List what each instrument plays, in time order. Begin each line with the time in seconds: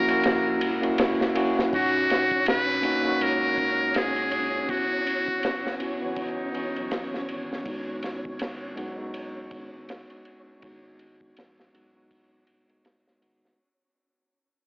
Already playing: analog synth bass A#1, tine electric piano A#3 C#4 E4 F#4, muted trumpet A#4
0.08 tine electric piano A#3 C#4 E4 F#4, ride
0.24 snare, ride
0.61 analog synth bass E1, ride
0.82 tine electric piano A#3 C#4 E4 F#4, ride
0.98 snare, ride
1.21 snare
1.35 analog synth bass F#1, tine electric piano A#3 C#4 E4 F#4, ride
1.59 snare
1.70 analog synth bass D#1, tine electric piano A#2 C#4 D#4, synth texture C#4 C#5, kick, ride
1.75 muted trumpet F#4, tine electric piano F#4
2.10 snare, ride
2.31 kick
2.46 muted trumpet B4, snare, ride
2.82 tine electric piano A#3 C#4 D#4 F#4, ride
3.03 tine electric piano A#3 C#4 D#4
3.08 tine electric piano F#4
3.21 analog synth bass C#2, muted trumpet A#4, ride
3.57 kick, ride
3.94 muted trumpet G#4, snare, ride
4.16 ride
4.32 ride
4.67 analog synth bass F#1, tine electric piano B3 C#4 E4, muted trumpet F#4, kick, ride
4.72 tine electric piano F#4
5.07 ride
5.28 kick
5.43 snare, ride
5.67 snare
5.79 tine electric piano B3 C#4 E4 F#4, ride
6.01 tine electric piano E3 B3 C#4 F#4
6.17 muted trumpet D#4, kick, ride
6.53 tine electric piano E3 B3 C#4, ride
6.58 tine electric piano F#4
6.76 analog synth bass B1, ride
6.91 snare, ride
7.14 snare
7.29 analog synth bass G#1, ride
7.53 snare
7.63 tine electric piano G#3 B3 D#4, kick, ride
7.69 tine electric piano F#4
8.03 snare, ride
8.25 kick
8.39 snare, ride
8.75 analog synth bass B1, tine electric piano G#3 B3 D#4 F#4, ride
8.96 tine electric piano G#3 B3 D#4
9.02 tine electric piano F#4
9.14 ride
9.51 analog synth bass G#1, kick, ride
9.74 analog synth bass G#1
9.89 snare, ride
10.10 ride
10.25 ride
10.59 tine electric piano G#3 B3 D#4, kick, ride
10.64 analog synth bass G#1, tine electric piano F#4
10.99 ride
11.21 kick
11.37 analog synth bass A#1, snare, ride
11.60 snare
11.73 analog synth bass B1, tine electric piano G#3 B3 D#4 F#4, ride
11.94 tine electric piano G#3 B3 D#4 F#4
12.11 kick, ride
12.47 analog synth bass D#1, ride
12.68 tine electric piano G#3 B3 D#4 F#4, ride
12.85 snare, ride
13.08 snare
13.20 analog synth bass G#1, tine electric piano G#3 B3 D#4 F#4, ride
13.45 snare